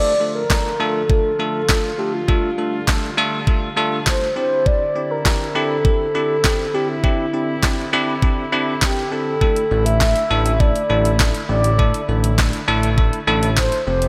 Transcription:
Already playing: brass ensemble D3 F3 F4, tine electric piano A3 D4 F4 A4, soft synth lead D5
0.20 tine electric piano A3 D4 F4 A4
0.35 soft synth lead A#4
0.50 tine electric piano A3 D4 F4 A4, kick, snare, clap
0.80 tine electric piano A3 D4 F4 A4, soft synth lead A4
1.10 tine electric piano A3 D4 F4 A4, kick
1.39 tine electric piano A3 D4 F4 A4
1.69 tine electric piano A3 D4 F4 A4, kick, snare, clap
1.98 tine electric piano A3 D4 F4 A4, soft synth lead G4
2.14 soft synth lead F4
2.28 brass ensemble G3, tine electric piano A3 D4 F4 A4, kick
2.58 tine electric piano A3 D4 F4 A4
2.88 tine electric piano A3 D4 F4 A4, kick, snare, clap
3.17 tine electric piano A3 D4 F4 A4
3.47 tine electric piano A3 D4 F4 A4, kick
3.77 tine electric piano A3 D4 F4 A4
4.06 tine electric piano A3 D4 F4 A4, soft synth lead C5, kick, snare, clap
4.36 brass ensemble D3 C4 E4, tine electric piano C4 D4 E4 G4, soft synth lead C5
4.66 soft synth lead D5, kick
4.95 tine electric piano C4 D4 E4 G4
5.11 soft synth lead A#4
5.25 tine electric piano C4 D4 E4 G4, kick, snare, clap
5.55 tine electric piano C4 D4 E4 G4, soft synth lead A4
5.85 tine electric piano C4 D4 E4 G4, kick
6.15 tine electric piano C4 D4 E4 G4
6.44 tine electric piano C4 D4 E4 G4, kick, snare, clap
6.74 tine electric piano C4 D4 E4 G4, soft synth lead G4
6.89 soft synth lead E4
7.04 tine electric piano C4 D4 E4 G4, kick
7.33 tine electric piano C4 D4 E4 G4
7.63 tine electric piano C4 D4 E4 G4, kick, snare, clap
7.93 tine electric piano C4 D4 E4 G4
8.22 tine electric piano C4 D4 E4 G4, kick
8.52 tine electric piano C4 D4 E4 G4
8.82 tine electric piano C4 D4 A#4, soft synth lead G4, kick, snare, clap
9.11 tine electric piano C4 D4 E4 G4, soft synth lead A4
9.41 tine electric piano A3 D4 E4 A4, brass ensemble A3, kick
9.56 closed hi-hat
9.71 analog synth bass A1, tine electric piano A3 D4 E4 A4
9.86 soft synth lead E5, closed hi-hat
10.00 tine electric piano A3 D4 E4 A4, kick, snare, clap
10.16 closed hi-hat
10.30 analog synth bass A1, tine electric piano A3 D4 E4 A4
10.46 closed hi-hat
10.60 tine electric piano A3 D4 E4 A4, soft synth lead D5, kick
10.76 closed hi-hat
10.90 analog synth bass A1, tine electric piano A3 D4 E4 A4
11.05 closed hi-hat
11.19 tine electric piano A3 D4 E4 A4, kick, snare, clap
11.34 closed hi-hat
11.49 analog synth bass A1, tine electric piano A3 D4 E4 G4, soft synth lead D5
11.64 closed hi-hat
11.79 tine electric piano A3 D4 E4 A4, kick
11.94 closed hi-hat
12.08 analog synth bass A1, tine electric piano A3 D4 E4 A4
12.24 closed hi-hat
12.38 tine electric piano A3 D4 E4 A4, kick, snare, clap
12.53 closed hi-hat
12.68 analog synth bass A1, tine electric piano A3 D4 E4 A4
12.83 closed hi-hat
12.98 tine electric piano A3 D4 E4 A4, kick
13.13 closed hi-hat
13.27 analog synth bass A1, tine electric piano A3 D4 E4 A4
13.43 closed hi-hat
13.57 tine electric piano A3 D4 E4 A4, soft synth lead C5, kick, snare, clap
13.72 closed hi-hat
13.87 analog synth bass F1, brass ensemble F3 A3 G4, tine electric piano A3 C4 F4 G4, soft synth lead C5
14.02 closed hi-hat

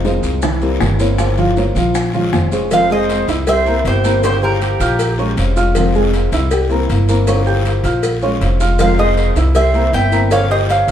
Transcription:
Already playing: upright bass F1
0.05 nylon-string guitar D#3 G#3 C4 F4, grand piano G#3 G#4 C5, high bongo, short guiro, maracas
0.23 upright bass C2, short guiro, maracas
0.42 grand piano E3 E4 E5, muted nylon-string guitar stroke, high bongo, long guiro, maracas
0.61 nylon-string guitar E3 A#3 C4 E4, grand piano G3 G4 A#4, maracas
0.80 upright bass G1, nylon-string guitar E3 A#3 C4 E4, high bongo, low bongo, short guiro, maracas
0.99 nylon-string guitar E3 A#3 C4 E4, grand piano A#3 A#4 C#5, short guiro, maracas
1.18 nylon-string guitar C#3 F3 A#3 F4 G4, high bongo, long guiro, maracas
1.37 grand piano F3 F4 F5, high bongo, maracas
1.56 nylon-string guitar F3 A#3 F4 G4, grand piano A#3 A#4 C#5, high bongo, short guiro, maracas
1.75 upright bass A#1, grand piano F3 F4 F5, short guiro, maracas
1.95 muted nylon-string guitar stroke, high bongo, long guiro, maracas
2.13 grand piano F3 F4 F5, nylon-string guitar G#3 C#4 F4, high bongo, maracas
2.32 upright bass F1, nylon-string guitar F3 G#3 C#4 F4, high bongo, low bongo, short guiro, maracas
2.51 grand piano G#3 G#4 C5, nylon-string guitar G#3 C#4 F4, high bongo, short guiro, maracas
2.70 nylon-string guitar C3 D#3 G#3 C4 F4, grand piano F3 F4 F5, flute C5, cuban tres F5, cowbell, long guiro, maracas
2.90 grand piano G#3 G#4 G#5, flute C5, cuban tres D#5, maracas
3.08 nylon-string guitar D#3 G#3 C4 F4, cowbell, short guiro, maracas
3.27 upright bass C2, grand piano E4 E5 E6, cowbell, short guiro, maracas
3.46 grand piano G3 G4 G5, flute C5, cuban tres E5, muted nylon-string guitar stroke, cowbell, long guiro, maracas
3.65 nylon-string guitar E3 A#3 C4 E4, grand piano A#3 A#4 A#5, maracas
3.85 upright bass G1, nylon-string guitar E3 A#3 C4 E4, flute G4, cuban tres C5, cowbell, short guiro, maracas
4.03 nylon-string guitar E3 A#3 C4 E4, grand piano A#3 A#4 A#5, short guiro, maracas
4.22 nylon-string guitar C#3 F3 A#3 F4 G4, grand piano C#4 C#5 C#6, flute G4, cuban tres C5, cowbell, long guiro, maracas
4.42 grand piano G4 G5 G6, flute G4, cuban tres A#4, maracas
4.60 nylon-string guitar F3 A#3 F4 G4, cowbell, short guiro, maracas
4.80 upright bass A#1, grand piano F4 F5 F6, cowbell, short guiro, maracas
4.98 muted nylon-string guitar stroke, cowbell, long guiro, maracas
5.17 nylon-string guitar G#3 C#4 F4, grand piano C#4 C#5 C#6, maracas
5.37 upright bass F1, nylon-string guitar F3 G#3 C#4 F4, cowbell, short guiro, maracas
5.56 nylon-string guitar G#3 C#4 F4, grand piano F4 F5 F6, short guiro, maracas
5.75 nylon-string guitar C3 D#3 G#3 C4 F4, grand piano F3 F4 F5, cowbell, long guiro, maracas
5.94 grand piano G#3 G#4 G#5, maracas
6.13 nylon-string guitar D#3 G#3 C4 F4, cowbell, short guiro, maracas
6.32 upright bass C2, grand piano E4 E5 E6, cowbell, short guiro, maracas
6.51 grand piano G3 G4 G5, muted nylon-string guitar stroke, cowbell, long guiro, maracas
6.69 nylon-string guitar E3 A#3 C4 E4, grand piano A#3 A#4 A#5, maracas
6.89 upright bass G1, nylon-string guitar E3 A#3 C4 E4, cowbell, short guiro, maracas
7.07 nylon-string guitar E3 A#3 C4 E4, grand piano A#3 A#4 A#5, short guiro, maracas
7.27 nylon-string guitar C#3 F3 A#3 F4 G4, grand piano C#4 C#5 C#6, cowbell, long guiro, maracas
7.46 grand piano G4 G5 G6, maracas
7.64 nylon-string guitar F3 A#3 F4 G4, cowbell, short guiro, maracas
7.83 upright bass A#1, grand piano F4 F5 F6, cowbell, short guiro, maracas
8.03 muted nylon-string guitar stroke, cowbell, long guiro, maracas
8.22 nylon-string guitar G#3 C#4 F4, grand piano C#4 C#5 C#6, maracas
8.40 upright bass F1, nylon-string guitar F3 G#3 C#4 F4, cowbell, short guiro, maracas
8.60 nylon-string guitar G#3 C#4 F4, grand piano F4 F5 F6, short guiro, maracas
8.78 nylon-string guitar C3 D#3 G#3 C4 F4, grand piano F3 F4 F5, flute C5, cuban tres F5, cowbell, long guiro, maracas
8.98 grand piano G#3 G#4 G#5, flute C5, cuban tres D#5, maracas
9.16 nylon-string guitar D#3 G#3 C4 F4, cowbell, short guiro, maracas
9.36 upright bass C2, grand piano E4 E5 E6, cowbell, short guiro, maracas
9.55 grand piano G3 G4 G5, flute C5, cuban tres E5, muted nylon-string guitar stroke, cowbell, long guiro, maracas
9.74 nylon-string guitar E3 A#3 C4 E4, grand piano A#3 A#4 A#5, maracas
9.93 upright bass G1, nylon-string guitar E3 A#3 C4 E4, flute E5, cuban tres G5, cowbell, short guiro, maracas
10.12 nylon-string guitar E3 A#3 C4 E4, grand piano A#3 A#4 A#5, short guiro, maracas
10.31 nylon-string guitar C#3 F3 A#3 F4 G4, grand piano C#4 C#5 C#6, flute C#5, cuban tres F5, cowbell, long guiro, maracas
10.50 grand piano G4 G5 G6, flute C5, cuban tres D#5, maracas
10.68 nylon-string guitar F3 A#3 F4 G4, flute C#5, cuban tres F5, cowbell, short guiro, maracas
10.88 upright bass A#1, short guiro

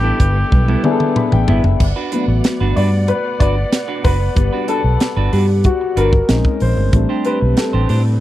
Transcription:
Already playing: fingered electric bass A1, string section G3 E4 A4 B4, grand piano B3 D4 E4 A4, cor anglais G4
0.04 clean electric guitar B3 E4 A4
0.20 fingered electric bass G1, kick, closed hi-hat
0.37 muted clean electric guitar stroke
0.52 fingered electric bass B1, muted clean electric guitar stroke, kick, high tom
0.68 clean electric guitar B3 E4 A4, high tom
0.84 grand piano B3 D4 E4 G#4, muted clean electric guitar stroke, mid tom
0.91 grand piano A4
1.00 muted clean electric guitar stroke, mid tom
1.16 grand piano B5, muted clean electric guitar stroke, mid tom
1.32 fingered electric bass A1, grand piano G5, muted clean electric guitar stroke, mid tom
1.48 fingered electric bass G1, clean electric guitar B3 E4 B4, grand piano E5, floor tom
1.64 fingered electric bass F#1, muted clean electric guitar stroke, floor tom
1.80 fingered electric bass G1, string section B3 D5 F#5, muted clean electric guitar stroke, kick, crash
1.96 clean electric guitar D4 F#4 B4
2.12 grand piano F#3 A3 B3, clean electric guitar D4 F#4 B4, closed hi-hat
2.28 fingered electric bass A1, muted clean electric guitar stroke
2.44 muted clean electric guitar stroke, snare, closed hi-hat
2.60 fingered electric bass G1, clean electric guitar D4 F#4 B4
2.76 fingered electric bass G2, clean electric guitar D4 F#4 B4, grand piano D5, open hi-hat
3.08 grand piano B4, closed hi-hat
3.25 muted clean electric guitar stroke
3.40 fingered electric bass G1, clean electric guitar D4 F#4 B4, grand piano D5, kick, closed hi-hat
3.57 muted clean electric guitar stroke
3.72 muted clean electric guitar stroke, snare, closed hi-hat
3.88 clean electric guitar D4 F#4 B4
4.04 fingered electric bass F#1, clean electric guitar D4 F#4 B4, grand piano B4, kick, open hi-hat
4.21 muted clean electric guitar stroke
4.35 fingered electric bass G1, grand piano G3 B3, muted clean electric guitar stroke, kick, closed hi-hat
4.53 clean electric guitar D4 F#4 B4
4.68 clean electric guitar D4 F#4 B4, grand piano A4, closed hi-hat
4.84 fingered electric bass B1
5.00 muted clean electric guitar stroke, snare, closed hi-hat
5.16 fingered electric bass G1, clean electric guitar D4 F#4 B4
5.32 fingered electric bass G2, clean electric guitar D4 F#4 B4, grand piano G4, open hi-hat
5.64 grand piano F#4, kick, closed hi-hat
5.81 muted clean electric guitar stroke
5.97 fingered electric bass G1, clean electric guitar D4 F#4 B4, grand piano A#4, closed hi-hat
6.13 muted clean electric guitar stroke, kick
6.28 fingered electric bass A#1, string section C#3 G#3 A#3, grand piano G#3 C4 C#4 D#4, muted clean electric guitar stroke, snare, closed hi-hat
6.45 muted clean electric guitar stroke, kick
6.60 fingered electric bass A#1, grand piano C5, open hi-hat
6.77 fingered electric bass G1, muted clean electric guitar stroke
6.93 fingered electric bass A1, string section G3 A3 C4, grand piano G3 A3 C4 D4, muted clean electric guitar stroke, kick, closed hi-hat
7.09 clean electric guitar D4 G4 C5
7.25 clean electric guitar D4 G4 C5, grand piano B4, closed hi-hat
7.42 fingered electric bass B1
7.57 grand piano A4, muted clean electric guitar stroke, snare, closed hi-hat
7.73 fingered electric bass A1, clean electric guitar D4 G4 C5
7.89 fingered electric bass A2, clean electric guitar D4 G4 C5, open hi-hat

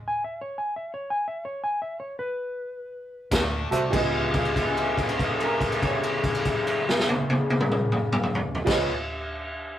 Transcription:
0.08 electric slide guitar G#5
0.24 electric slide guitar E5
0.41 electric slide guitar C#5
0.58 electric slide guitar G#5
0.76 electric slide guitar E5
0.94 electric slide guitar C#5
1.10 electric slide guitar G#5
1.28 electric slide guitar E5
1.45 electric slide guitar C#5
1.64 electric slide guitar G#5
1.82 electric slide guitar E5
2.00 electric slide guitar C#5
2.19 electric slide guitar B4
3.31 fingered electric bass D2, overdriven electric guitar D3 A3, kick, snare, closed hi-hat
3.71 fingered electric bass C2, overdriven electric guitar D3 A3, upright piano F#4 A4 C5 E5, closed hi-hat
3.90 fingered electric bass C#2, overdriven electric guitar C#3, upright piano F4 G#4, kick, crash
3.94 overdriven electric guitar G#3 B3 F4, upright piano B3 D#5
4.34 kick, crash
4.38 upright piano F5
4.45 crash
4.56 kick, crash
4.77 crash
4.97 upright piano E5, kick, crash
5.02 upright piano F5
5.09 crash
5.19 upright piano D#5, kick, crash
5.39 upright piano A4, crash
5.44 upright piano A#4
5.61 kick, crash
5.72 crash
5.82 upright piano C#5, kick, crash
6.03 crash
6.24 kick, crash
6.35 crash
6.45 kick, crash
6.67 crash
6.89 snare
6.99 snare
7.09 high tom
7.30 high tom
7.50 high tom
7.61 mid tom
7.72 mid tom
7.92 mid tom
8.12 mid tom
8.23 mid tom
8.35 floor tom
8.55 floor tom
8.64 fingered electric bass C#2, overdriven electric guitar C#3 G#3, upright piano F4 G#4, kick, crash
8.68 overdriven electric guitar B3 F4, upright piano B4 C#5 D#5, snare

